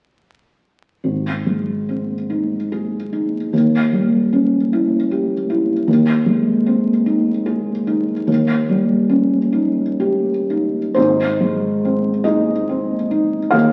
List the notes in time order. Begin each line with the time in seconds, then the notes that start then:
1.04 G#1
1.46 G#3
1.89 C4
2.30 D#4
2.72 G#4
3.13 D#4
3.53 D#2
3.93 G3
4.33 C#4
4.73 E4
5.11 G4
5.50 E4
5.87 D#2
6.26 G#3
6.66 C4
7.06 D#4
7.46 G#4
7.87 D#4
8.27 D#2
8.69 G3
9.09 C#4
9.53 D#4
10.00 G4
10.50 D#4
10.94 G#1 D#4 C5
11.40 G#3
11.85 C4
12.24 D#4 G#4 D#5
12.69 C4
13.11 D#4
13.50 D#2 G#4 F5